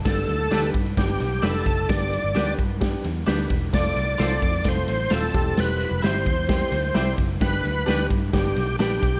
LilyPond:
<<
  \new Staff \with { instrumentName = "Tonewheel organ" } { \time 4/4 \key g \mixolydian \tempo 4 = 130 a'4. r8 g'4 a'4 | d''4. r2 r8 | d''2 c''4 a'4 | b'4 c''2~ c''8 r8 |
b'4. r8 g'4 g'4 | }
  \new Staff \with { instrumentName = "Clean electric guitar" } { \time 4/4 \key g \mixolydian r4 <d' g' b'>8 r4. <d' g' b'>8 r8 | r4 <d' g' b'>8 r4. <d' g' b'>8 r8 | r4 <f' a' c''>8 r4. <f' a' c''>8 r8 | r4 <e' g' c''>8 r4. <e' g' c''>8 r8 |
r4 <d' g' b'>8 r4. <d' g' b'>8 r8 | }
  \new Staff \with { instrumentName = "Grand piano" } { \time 4/4 \key g \mixolydian <g b d' g'>8 r8 <g b d' g'>8 r8 <g b d' g'>8 r8 <g b d' g'>8 r8 | <g b d' g'>8 r8 <g b d' g'>8 r8 <g b d' g'>8 r8 <g b d' g'>8 r8 | <a c' f' a'>8 r8 <a c' f' a'>8 r8 <a c' f' a'>8 r8 <a c' f' a'>8 <g c' e' g'>8~ | <g c' e' g'>8 r8 <g c' e' g'>8 r8 <g c' e' g'>8 r8 <g c' e' g'>8 r8 |
<g b d' g'>8 r8 <g b d' g'>8 r8 <g b d' g'>8 r8 <g b d' g'>8 r8 | }
  \new Staff \with { instrumentName = "Picked electric bass" } { \clef bass \time 4/4 \key g \mixolydian g,,8 d,8 d,8 g,8 g,,8 b,,8 f,,8 fis,,8 | g,,8. g,,16 d,8 g,4 e,8 d,8 e,,8 | f,,8 c,8 c,8 f,8 f,,8 a,,8 ees,,8 e,,8 | e,,8. f,,16 g,,8 e,4 d,8 c,8 fis,,8 |
g,,8 d,8 d,8 g,8 g,,8 b,,8 bes,,8 b,,8 | }
  \new DrumStaff \with { instrumentName = "Drums" } \drummode { \time 4/4 <hh bd sn>16 hh16 hh8 <hh sn>8 <hh bd>16 hh16 <hh bd sn>8 hh8 <hh sn>16 sn16 <hh bd>8 | <hh bd sn>8 hh8 <hh sn>8 <hh bd>8 <hh bd sn>8 hh8 <hh sn>16 sn16 <hh bd>8 | <hh bd sn>16 hh16 hh8 <hh sn>8 <hh bd>16 hh16 <hh bd sn>8 hh8 <hh sn>16 sn16 <hh bd>8 | <hh sn>16 hh16 hh8 <hh sn>8 <hh bd>8 <hh bd sn>8 hh8 <hh sn>8 <hh bd>8 |
<hh bd sn>16 hh16 hh8 <hh sn>8 <hh bd>8 <hh bd sn>8 hh8 <hh sn>16 sn16 <hh bd>8 | }
>>